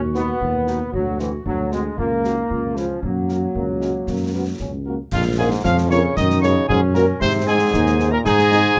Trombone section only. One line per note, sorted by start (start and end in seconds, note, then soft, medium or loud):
0.15 0.89 B3 medium
0.93 1.19 F#3 medium
1.20 1.31 E3 medium
1.46 1.70 F#3 medium
1.72 1.96 G#3 medium
1.97 2.72 A#3 medium
2.76 3.02 F3 medium
3.02 4.82 F#3 medium
5.64 6.12 C#4 medium
6.16 6.69 D#4 medium
6.69 7.17 C#4 medium
7.21 7.73 C4 medium
7.73 7.99 D#4 medium
7.99 8.11 C4 medium
8.24 8.73 D#4 medium